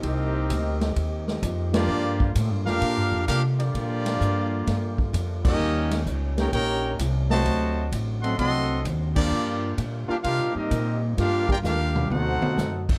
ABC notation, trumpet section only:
X:1
M:4/4
L:1/8
Q:"Swing" 1/4=129
K:Gm
V:1 name="Trumpet section"
[CGBe]4 z3 [B,FGd]- | [B,FGd]2 z [DGBf]3 [DGBf] [B,FGd]- | [B,FGd]6 z [^CGBe]- | [^CGBe]2 z [EB_dg] [EBdg]2 z [^F=cea]- |
[^Fcea]2 z [Ae^fc'] [Aefc']2 z [B,=FGd]- | [B,FGd]2 z [DGBf] [DGBf] [CGBe]2 z | [DGBf] [FBdg] [DGBf]2 [EAc^f]3 z |]